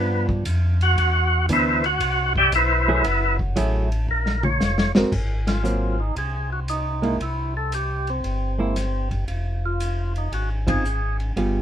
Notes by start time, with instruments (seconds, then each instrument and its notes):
Already playing: tonewheel organ G2 B3 B4, hollow-body jazz guitar F3 B3 D4
0.29 kick
0.45 tonewheel organ F2, hi-hat pedal, ride
0.81 tonewheel organ F#4 F#5, ride
0.98 tonewheel organ E2, ride
1.49 tonewheel organ D2 E4 B4 E5, hollow-body jazz guitar E3 B3 D4, hi-hat pedal, ride
1.53 tonewheel organ C5
1.84 tonewheel organ F#4 F#5, ride
2.00 tonewheel organ C2, ride
2.36 tonewheel organ G4 D5 E5 G5, kick
2.52 tonewheel organ B1 E4 B4 C5 E5, hi-hat pedal, ride
2.88 hollow-body jazz guitar F#3 A3 E4 G#4
3.04 tonewheel organ F#1, ride
3.39 kick
3.56 tonewheel organ A1, hollow-body jazz guitar F#3 A3 E4 G#4, hi-hat pedal, ride
3.92 ride
4.09 tonewheel organ A#1 A#4
4.26 snare
4.43 tonewheel organ C#5, mid tom
4.60 tonewheel organ F1, snare, hi-hat pedal
4.78 snare
4.95 tonewheel organ F1, hollow-body jazz guitar G#3 C4 F#4 A#4, snare
5.12 tonewheel organ G#1, kick, crash
5.47 tonewheel organ F4, snare, ride
5.63 hollow-body jazz guitar F#3 A#3 C4, hi-hat pedal
6.00 tonewheel organ D#4
6.16 tonewheel organ C2 G#4, ride
6.53 tonewheel organ F#4
6.68 tonewheel organ D#4, hi-hat pedal, ride
7.02 hollow-body jazz guitar G#3 A#3 E4, ride
7.20 tonewheel organ C2 E4, ride
7.57 tonewheel organ A4
7.72 tonewheel organ G4, hi-hat pedal, ride
8.07 tonewheel organ C4, ride
8.24 tonewheel organ G1, ride
8.59 hollow-body jazz guitar G#3 A#3 E4
8.76 snare, hi-hat pedal, ride
9.11 kick, ride
9.28 tonewheel organ F1, ride
9.66 tonewheel organ F4
9.80 hi-hat pedal, ride
10.16 tonewheel organ D#4, ride
10.32 tonewheel organ G#1 F#4, ride
10.67 hollow-body jazz guitar F3 C4 D#4 G#4, tonewheel organ G#4, kick, ride
10.85 hi-hat pedal
11.20 ride
11.36 tonewheel organ G1, hollow-body jazz guitar G3 B3 F4 G#4, ride